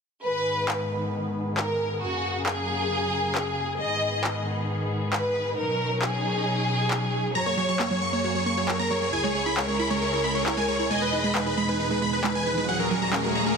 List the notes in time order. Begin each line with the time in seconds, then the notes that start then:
0.24 G#2 D#3 B3 G#4 B4
0.68 clap
1.57 A#4, clap
2.02 F#2 C#3 A#3 F#4
2.46 G#4, clap
3.35 clap
3.80 G#2 D#3 B3 D#5
4.24 clap
5.13 B4, clap
5.57 B2 F#3 C#4 D#4 A#4
6.02 G#4, clap
6.91 clap
7.35 F#2 F#3 A#3 G#4 C#5 A#5
7.46 A#3 C#5
7.57 F#3 C#5
7.68 F#3 C#6
7.79 A#3 C#5, clap
7.91 F#3 C#5
8.02 F#3 C#6
8.13 A#3 C#5
8.24 F#3 C#5
8.35 F#3 C#5
8.46 A#3 C#6
8.57 F#3 C#5
8.68 F#3 A#4 C#5, clap
8.79 A#3 A#5
8.91 F#3 C#5
9.02 F#3 C#5
9.13 C#2 C#3 E4 G#4 G#5
9.24 G#3 C#5
9.35 G#3 C#5
9.46 E4 B5
9.57 G#3 A#4 C#5, clap
9.68 G#3 C#5
9.79 E4 B5
9.90 G#3 C#5
10.02 G#3 C#5
10.13 E4 C#5
10.24 G#3 B5
10.35 G#3 C#5
10.46 E4 C#5, clap
10.57 G#3 G#5
10.68 G#3 C#5
10.79 E4 C#5
10.91 E2 B2 G#3 D#4 D#5 G#5, riser
11.02 G#3 B4
11.13 D#4 B4
11.24 G#3 B5
11.35 G#3 B4, clap
11.46 D#4 B4
11.57 G#3 B5
11.68 G#3 B4
11.79 D#4 B4
11.91 G#3 B4
12.02 G#3 B5
12.13 D#4 B4
12.24 G#3 B4, clap
12.35 G#3 G#5
12.46 D#4 B4
12.57 G#3 B4
12.68 D#2 A#2 F#3 C#4 F#4 G#4 F#5
12.80 C#4 A#4
12.91 F#3 A#4
13.02 F#3 A#5
13.13 C#4 G#4 A#4, clap
13.24 F#3 A#4
13.35 F#3 A#5
13.46 C#4 A#4